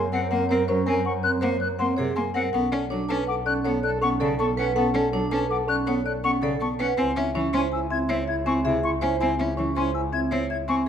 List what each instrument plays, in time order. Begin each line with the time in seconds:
Already playing: double bass F#2, marimba G#5
0.12 cello C4, french horn A#4, vibraphone A#4, marimba F#5, flute F#5
0.31 cello A#3, vibraphone C4, french horn A#4, marimba F#5
0.49 cello C4, french horn A#4, marimba C#5
0.68 cello F#3, vibraphone C#4, french horn A#4, marimba C5
0.86 cello C4, french horn A#4, vibraphone A#4, marimba G#5, flute G#5
1.05 french horn A#4, marimba F#5, flute C#6
1.23 vibraphone C4, french horn A#4, marimba C#5, flute F#6
1.41 cello A#3, french horn A#4, marimba C5, vibraphone C5, flute F#5
1.60 french horn A#4, marimba C#5, flute F#6
1.79 cello A#3, vibraphone C4, french horn A#4, marimba F#5, flute C6
1.97 cello C3, vibraphone G#4, french horn A#4, marimba C#5
2.16 cello A#3, french horn A#4, marimba G#5, flute C6
2.34 cello C4, vibraphone A#4, marimba F#5, flute F#5
2.53 double bass B1, cello B3, vibraphone C#4, french horn A4, marimba F#5
2.72 cello C#4, french horn A4, marimba D5
2.90 cello F#3, vibraphone D4, french horn A4, marimba C#5
3.09 cello C#4, french horn A4, vibraphone B4, marimba A5, flute A5
3.27 french horn A4, marimba F#5, flute D6
3.46 vibraphone C#4, french horn A4, marimba D5, flute F#6
3.64 cello B3, french horn A4, marimba C#5, vibraphone C#5, flute F#5
3.83 french horn A4, marimba D5, flute F#6
4.01 cello B3, vibraphone C#4, french horn A4, marimba F#5, flute C#6
4.20 cello C#3, french horn A4, vibraphone A4, marimba D5
4.38 cello B3, french horn A4, marimba A5, flute C#6
4.57 cello C#4, french horn A4, vibraphone B4, flute F#5, marimba F#5
4.75 cello B3, vibraphone C#4, french horn A4, marimba F#5
4.94 cello C#4, french horn A4, marimba D5
5.13 cello F#3, vibraphone D4, french horn A4, marimba C#5
5.31 cello C#4, french horn A4, vibraphone B4, marimba A5, flute A5
5.49 french horn A4, marimba F#5, flute D6
5.67 vibraphone C#4, french horn A4, marimba D5, flute F#6
5.86 cello B3, french horn A4, vibraphone C#5, marimba C#5, flute F#5
6.05 french horn A4, marimba D5, flute F#6
6.23 cello B3, vibraphone C#4, french horn A4, marimba F#5, flute C#6
6.42 cello C#3, french horn A4, vibraphone A4, marimba D5
6.60 cello B3, french horn A4, marimba A5, flute C#6
6.79 cello C#4, vibraphone B4, flute F#5, marimba F#5
6.97 double bass C#2, cello C4, vibraphone C4, french horn E4, marimba G#5
7.16 cello C#4, french horn E4, marimba E5
7.35 cello E3, vibraphone C#4, french horn E4, marimba C#5
7.53 cello C#4, french horn E4, vibraphone C5, flute G#5, marimba C6
7.72 french horn E4, marimba G#5, flute E6
7.90 vibraphone C4, french horn E4, marimba E5, flute G#6
8.09 cello C4, french horn E4, vibraphone C#5, marimba C#5, flute E5
8.28 french horn E4, marimba E5, flute G#6
8.45 vibraphone C4, cello C4, french horn E4, marimba G#5, flute C#6
8.64 cello C3, french horn E4, vibraphone G#4, marimba E5
8.83 french horn E4, marimba C6, flute C#6
9.01 cello C#4, french horn E4, vibraphone C5, marimba G#5
9.20 vibraphone C4, cello C4, french horn E4, marimba G#5
9.39 cello C#4, french horn E4, marimba E5
9.57 cello E3, vibraphone C#4, french horn E4, marimba C#5
9.75 cello C#4, french horn E4, vibraphone C5, flute G#5, marimba C6
9.94 french horn E4, marimba G#5, flute E6
10.12 vibraphone C4, french horn E4, marimba E5, flute G#6
10.31 cello C4, french horn E4, vibraphone C#5, marimba C#5, flute E5
10.50 french horn E4, marimba E5, flute G#6
10.68 cello C4, vibraphone C4, french horn E4, marimba G#5, flute C#6